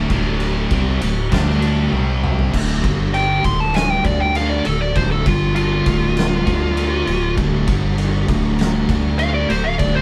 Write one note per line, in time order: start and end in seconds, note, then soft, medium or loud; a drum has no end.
0.00 0.10 D3 loud
0.10 0.67 D1 medium
0.10 0.70 D2 medium
0.10 0.70 A2 medium
0.10 0.70 D3 loud
0.10 kick loud
0.10 ride medium
0.40 ride medium
0.70 0.99 C2 loud
0.70 1.00 C3 loud
0.70 1.01 G3 loud
0.70 1.01 C4 loud
0.70 kick loud
0.70 ride loud
1.01 1.30 D1 medium
1.01 1.26 D2 medium
1.01 1.26 A2 medium
1.01 ride medium
1.31 1.88 D2 medium
1.31 1.91 D3 loud
1.31 1.92 A3 loud
1.31 1.92 D4 loud
1.31 kick loud
1.31 snare loud
1.31 ride loud
1.50 snare soft
1.62 ride medium
1.91 2.49 C2 loud
1.91 2.51 C3 medium
1.91 2.52 G3 medium
1.91 2.52 C4 medium
1.91 high tom medium
2.24 mid tom medium
2.39 floor tom medium
2.52 2.81 D1 loud
2.52 2.82 D2 loud
2.52 2.82 A2 loud
2.52 2.82 D3 loud
2.52 kick loud
2.52 crash loud
2.82 3.40 G1 medium
2.82 3.42 G2 loud
2.82 3.43 D3 medium
2.82 3.43 G3 loud
2.82 kick loud
2.82 ride medium
3.14 3.43 G5 medium
3.14 ride medium
3.43 4.01 D1 loud
3.43 4.03 D2 medium
3.43 4.03 A2 loud
3.43 4.02 D3 loud
3.43 3.60 C6 medium
3.43 kick loud
3.43 ride medium
3.60 3.74 A5 medium
3.74 3.90 G#5 medium
3.74 snare loud
3.74 ride medium
3.90 4.04 G5 medium
4.04 4.61 D2 loud
4.04 4.64 D3 medium
4.04 4.64 A3 medium
4.04 4.65 D4 loud
4.04 4.20 D5 medium
4.04 kick loud
4.04 ride medium
4.20 4.35 G5 medium
4.35 4.50 F5 medium
4.35 ride loud
4.50 4.64 D5 medium
4.65 4.94 D1 medium
4.65 4.89 D2 medium
4.65 4.90 A2 medium
4.65 4.80 A4 medium
4.65 ride medium
4.81 4.95 D5 medium
4.95 5.24 D1 loud
4.95 5.25 D2 medium
4.95 5.25 A2 loud
4.95 5.25 D3 loud
4.95 5.10 C5 medium
4.95 kick loud
4.95 ride loud
5.11 5.26 A4 medium
5.26 5.83 G1 loud
5.26 5.85 G2 medium
5.26 5.86 D3 loud
5.26 5.86 G3 loud
5.26 5.54 F4 medium
5.26 kick loud
5.26 ride medium
5.55 7.34 F4 medium
5.55 ride loud
5.86 6.43 D1 loud
5.86 6.46 D2 medium
5.86 6.45 A2 loud
5.86 6.45 D3 loud
5.86 kick loud
5.86 ride medium
6.17 snare loud
6.17 ride loud
6.46 7.04 D2 loud
6.46 7.06 D3 medium
6.46 7.07 A3 medium
6.46 7.07 D4 medium
6.46 kick loud
6.46 ride medium
6.77 ride loud
7.07 7.35 D1 medium
7.07 7.31 D2 medium
7.07 7.32 A2 medium
7.07 ride medium
7.37 7.66 D1 medium
7.37 7.67 D2 medium
7.37 7.68 A2 medium
7.37 7.68 D3 loud
7.37 kick loud
7.37 ride medium
7.67 8.25 G1 loud
7.67 8.27 G2 medium
7.67 8.28 D3 medium
7.67 8.28 G3 loud
7.67 kick loud
7.67 ride medium
7.98 ride loud
8.28 8.85 D1 loud
8.28 8.88 D2 loud
8.28 8.88 A2 medium
8.28 8.87 D3 medium
8.28 kick loud
8.28 ride medium
8.59 snare loud
8.59 ride loud
8.88 9.46 D2 loud
8.88 9.49 D3 medium
8.88 9.49 A3 loud
8.88 9.49 D4 medium
8.88 kick loud
8.88 ride medium
9.19 9.34 F5 loud
9.19 ride loud
9.34 9.49 D5 loud
9.49 9.78 D1 medium
9.49 9.74 D2 medium
9.49 9.74 A2 medium
9.49 9.64 C5 medium
9.49 ride medium
9.64 9.79 F5 loud
9.78 10.02 D1 medium
9.78 10.02 D2 loud
9.78 10.02 A2 loud
9.78 10.02 D3 loud
9.78 9.95 D5 medium
9.78 kick loud
9.78 ride medium
9.95 10.02 C5 loud